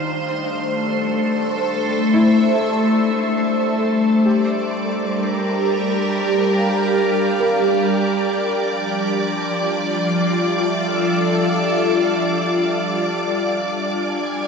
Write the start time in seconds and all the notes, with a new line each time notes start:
Already playing: G3 D4 F4 C5
0.05 A3
0.47 A4
1.66 E5
2.14 E4
4.25 G3 G4 D5 D6
4.69 A#4
4.89 G4
6.16 F5
7.40 A#4
8.50 F3
9.52 F4
10.37 A4 E5
13.73 G#5